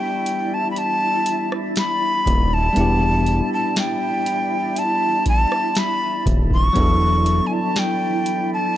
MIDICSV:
0, 0, Header, 1, 6, 480
1, 0, Start_track
1, 0, Key_signature, 1, "minor"
1, 0, Tempo, 1000000
1, 1325, Time_signature, 4, 2, 24, 8
1, 4211, End_track
2, 0, Start_track
2, 0, Title_t, "Flute"
2, 0, Program_c, 0, 73
2, 0, Note_on_c, 0, 79, 97
2, 259, Note_on_c, 0, 81, 89
2, 267, Note_off_c, 0, 79, 0
2, 339, Note_off_c, 0, 81, 0
2, 341, Note_on_c, 0, 83, 69
2, 376, Note_on_c, 0, 81, 103
2, 383, Note_off_c, 0, 83, 0
2, 721, Note_off_c, 0, 81, 0
2, 857, Note_on_c, 0, 83, 104
2, 1218, Note_on_c, 0, 81, 107
2, 1225, Note_off_c, 0, 83, 0
2, 1691, Note_off_c, 0, 81, 0
2, 1697, Note_on_c, 0, 81, 90
2, 1803, Note_off_c, 0, 81, 0
2, 1818, Note_on_c, 0, 79, 97
2, 2298, Note_on_c, 0, 81, 102
2, 2306, Note_off_c, 0, 79, 0
2, 2532, Note_off_c, 0, 81, 0
2, 2537, Note_on_c, 0, 81, 99
2, 2778, Note_on_c, 0, 83, 100
2, 2785, Note_off_c, 0, 81, 0
2, 3002, Note_off_c, 0, 83, 0
2, 3138, Note_on_c, 0, 85, 109
2, 3584, Note_on_c, 0, 80, 60
2, 3592, Note_off_c, 0, 85, 0
2, 3615, Note_on_c, 0, 81, 95
2, 3623, Note_off_c, 0, 80, 0
2, 3738, Note_on_c, 0, 79, 95
2, 3746, Note_off_c, 0, 81, 0
2, 4092, Note_off_c, 0, 79, 0
2, 4099, Note_on_c, 0, 81, 113
2, 4211, Note_off_c, 0, 81, 0
2, 4211, End_track
3, 0, Start_track
3, 0, Title_t, "Ambient pad"
3, 0, Program_c, 1, 92
3, 0, Note_on_c, 1, 64, 87
3, 0, Note_on_c, 1, 74, 75
3, 0, Note_on_c, 1, 76, 73
3, 4211, Note_off_c, 1, 64, 0
3, 4211, Note_off_c, 1, 74, 0
3, 4211, Note_off_c, 1, 76, 0
3, 4211, End_track
4, 0, Start_track
4, 0, Title_t, "Tine electric piano"
4, 0, Program_c, 2, 4
4, 0, Control_c, 2, 64, 127
4, 0, Note_on_c, 2, 55, 69
4, 0, Note_on_c, 2, 59, 63
4, 0, Note_on_c, 2, 62, 62
4, 0, Note_on_c, 2, 64, 61
4, 0, Note_on_c, 2, 67, 78
4, 1299, Note_off_c, 2, 55, 0
4, 1304, Note_off_c, 2, 59, 0
4, 1308, Note_off_c, 2, 62, 0
4, 1310, Note_on_c, 2, 55, 68
4, 1312, Note_off_c, 2, 64, 0
4, 1316, Note_off_c, 2, 67, 0
4, 1319, Note_on_c, 2, 59, 63
4, 1327, Note_on_c, 2, 62, 66
4, 1335, Note_on_c, 2, 64, 65
4, 1344, Note_on_c, 2, 67, 80
4, 3218, Note_off_c, 2, 55, 0
4, 3223, Note_off_c, 2, 59, 0
4, 3227, Note_off_c, 2, 62, 0
4, 3231, Note_off_c, 2, 64, 0
4, 3231, Note_on_c, 2, 54, 69
4, 3235, Note_off_c, 2, 67, 0
4, 3239, Note_on_c, 2, 59, 67
4, 3247, Note_on_c, 2, 62, 66
4, 3256, Note_on_c, 2, 64, 66
4, 3263, Note_on_c, 2, 69, 79
4, 4211, Note_off_c, 2, 54, 0
4, 4211, Note_off_c, 2, 59, 0
4, 4211, Note_off_c, 2, 62, 0
4, 4211, Note_off_c, 2, 64, 0
4, 4211, Note_off_c, 2, 69, 0
4, 4211, End_track
5, 0, Start_track
5, 0, Title_t, "Analog synth bass"
5, 0, Program_c, 3, 38
5, 1087, Note_on_c, 3, 27, 94
5, 1295, Note_off_c, 3, 27, 0
5, 1328, Note_on_c, 3, 28, 103
5, 1639, Note_off_c, 3, 28, 0
5, 3005, Note_on_c, 3, 27, 92
5, 3213, Note_off_c, 3, 27, 0
5, 3245, Note_on_c, 3, 28, 98
5, 3558, Note_off_c, 3, 28, 0
5, 4211, End_track
6, 0, Start_track
6, 0, Title_t, "Drums"
6, 126, Note_on_c, 9, 42, 70
6, 174, Note_off_c, 9, 42, 0
6, 367, Note_on_c, 9, 42, 70
6, 415, Note_off_c, 9, 42, 0
6, 605, Note_on_c, 9, 42, 76
6, 653, Note_off_c, 9, 42, 0
6, 730, Note_on_c, 9, 37, 101
6, 778, Note_off_c, 9, 37, 0
6, 844, Note_on_c, 9, 42, 66
6, 850, Note_on_c, 9, 38, 107
6, 892, Note_off_c, 9, 42, 0
6, 898, Note_off_c, 9, 38, 0
6, 1086, Note_on_c, 9, 36, 106
6, 1091, Note_on_c, 9, 42, 78
6, 1134, Note_off_c, 9, 36, 0
6, 1139, Note_off_c, 9, 42, 0
6, 1325, Note_on_c, 9, 42, 71
6, 1373, Note_off_c, 9, 42, 0
6, 1567, Note_on_c, 9, 42, 66
6, 1615, Note_off_c, 9, 42, 0
6, 1806, Note_on_c, 9, 42, 70
6, 1809, Note_on_c, 9, 38, 120
6, 1854, Note_off_c, 9, 42, 0
6, 1857, Note_off_c, 9, 38, 0
6, 2046, Note_on_c, 9, 42, 72
6, 2094, Note_off_c, 9, 42, 0
6, 2287, Note_on_c, 9, 42, 67
6, 2335, Note_off_c, 9, 42, 0
6, 2524, Note_on_c, 9, 42, 82
6, 2525, Note_on_c, 9, 36, 99
6, 2572, Note_off_c, 9, 42, 0
6, 2573, Note_off_c, 9, 36, 0
6, 2649, Note_on_c, 9, 37, 105
6, 2697, Note_off_c, 9, 37, 0
6, 2761, Note_on_c, 9, 42, 63
6, 2768, Note_on_c, 9, 38, 110
6, 2809, Note_off_c, 9, 42, 0
6, 2816, Note_off_c, 9, 38, 0
6, 3004, Note_on_c, 9, 36, 104
6, 3008, Note_on_c, 9, 42, 76
6, 3052, Note_off_c, 9, 36, 0
6, 3056, Note_off_c, 9, 42, 0
6, 3124, Note_on_c, 9, 36, 104
6, 3172, Note_off_c, 9, 36, 0
6, 3243, Note_on_c, 9, 42, 70
6, 3245, Note_on_c, 9, 36, 117
6, 3291, Note_off_c, 9, 42, 0
6, 3293, Note_off_c, 9, 36, 0
6, 3485, Note_on_c, 9, 42, 65
6, 3533, Note_off_c, 9, 42, 0
6, 3724, Note_on_c, 9, 42, 68
6, 3726, Note_on_c, 9, 38, 114
6, 3772, Note_off_c, 9, 42, 0
6, 3774, Note_off_c, 9, 38, 0
6, 3965, Note_on_c, 9, 42, 71
6, 4013, Note_off_c, 9, 42, 0
6, 4211, End_track
0, 0, End_of_file